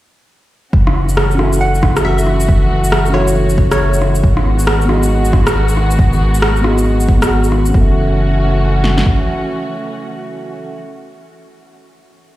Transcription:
0.73 F#1 E3 A3 C#4 F#4, kick
0.87 cross-stick
1.09 shaker
1.17 cross-stick
1.31 C#4, shaker
1.37 F#4 A4, cross-stick
1.43 E5
1.53 shaker
1.61 F#5
1.75 shaker
1.83 kick, cross-stick
1.92 C#4 F#4
1.97 A4 E5, cross-stick, shaker
2.05 E5
2.18 E5, shaker
2.27 cross-stick
2.40 shaker
2.49 kick
2.84 shaker
2.92 cross-stick
3.06 C#4, shaker
3.12 F#4 A4 C#5, cross-stick
3.18 E5
3.28 shaker
3.50 shaker
3.58 kick
3.71 C#5, cross-stick, shaker
3.94 shaker
4.02 cross-stick
4.15 shaker
4.23 G#1 D#3 G#3 B3 F#4, kick
4.37 cross-stick
4.59 shaker
4.67 cross-stick
4.81 B3, shaker
4.88 F#4 G#4, cross-stick
4.93 D#5
5.03 shaker
5.25 shaker
5.33 kick, cross-stick
5.47 cross-stick, shaker
5.69 shaker
5.77 cross-stick
5.91 shaker
5.99 kick
6.13 shaker
6.35 shaker
6.42 cross-stick
6.56 shaker
6.61 B3 F#4, cross-stick
6.66 G#4 D#5
6.78 shaker
7.00 shaker
7.08 kick
7.19 B3 F#4, cross-stick, shaker
7.24 G#4 F#5
7.44 shaker
7.52 cross-stick
7.66 C#4, shaker
7.73 F#1 E3 A3 C#4 F#4 A4, kick
7.81 E5
8.84 snare
8.98 snare
9.06 kick

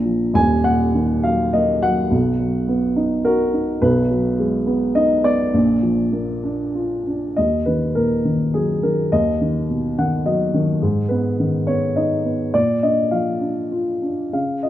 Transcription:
Already playing: A#1 A#2 A#5
0.05 F3
0.34 D#1 D#2 G#5
0.64 A#2 F#5
0.94 D#3
1.24 F#3 F5
1.53 A#3 D#5
1.82 F#3 F#5
2.11 B1 B2
2.40 F#3
2.68 B3
2.96 D#4
3.25 F#4 A#4
3.53 D#4
3.82 B1 B2 B4
4.11 F#3
4.39 G#3
4.67 B3
4.95 D#4 D#5
5.24 B3 D5
5.54 A#1 A#2
5.83 F3
6.12 A#3
6.44 D4
6.75 F4
7.07 D4
7.36 D#2 D#5
7.66 D#3 B4
7.95 A#2 A#4
8.25 D#3
8.54 F#3 G#4
8.83 D#3 A#4
9.12 D#2 D#5
9.41 D#3
9.70 B2
9.99 D#3 F#5
10.26 F#3 D#5
10.54 D#3
10.82 G#2
11.09 B3 B4
11.40 D#3
11.67 B3 C#5
11.96 D#4 D#5
12.25 B3
12.54 A#2 D5
12.83 D4 D#5
13.11 F3 F5
13.41 D4
13.72 F4
14.02 D4
14.33 C#3 F5
14.63 F4 D#5

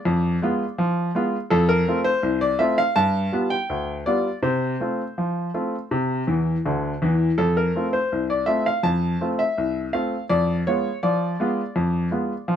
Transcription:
Already playing: D5
0.05 F2
0.42 G#3 B3 F4
0.78 F3
1.15 G#3 B3 F4
1.50 F2 A4
1.69 A#4
1.88 A3 C4 F4
2.04 C5
2.23 C2
2.41 D5
2.59 A3 C4 F4 E5
2.78 F5
2.96 G2 A5
3.32 G3 B3 F4
3.50 G5
3.70 D2
4.06 G3 B3 F4 D5
4.43 C3 C5
4.80 A3 C4 F4
5.18 F3
5.54 A3 C4 F4
5.91 C3
6.27 E2 E3
6.66 D2 D3
7.02 E2 E3
7.38 F2 A4
7.57 A#4
7.76 A3 C4 F4
7.93 C5
8.12 C2
8.30 D5
8.46 A3 C4 F4 E5
8.66 F5
8.83 F2 A5
9.21 A3 C4 F4
9.39 E5
9.58 C2
9.93 A3 C4 F4 F5
10.29 F2 D5
10.67 G#3 B3 F4 C#5
11.03 F3 D5
11.40 G#3 B3 F4
11.76 F2
12.11 G#3 B3 F4
12.48 F3

